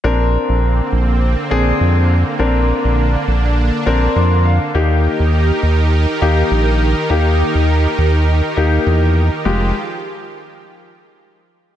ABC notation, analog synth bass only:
X:1
M:4/4
L:1/16
Q:1/4=102
K:Bbmix
V:1 name="Analog synth bass" clef=bass
B,,,3 B,,,3 B,,,4 B,,,2 F,,4 | B,,,3 B,,,3 B,,,4 B,,,2 F,,4 | E,,3 E,,3 E,,4 E,,2 B,,,4 | E,,3 E,,3 E,,4 E,,2 =E,,4 |
F,,,2 z12 z2 |]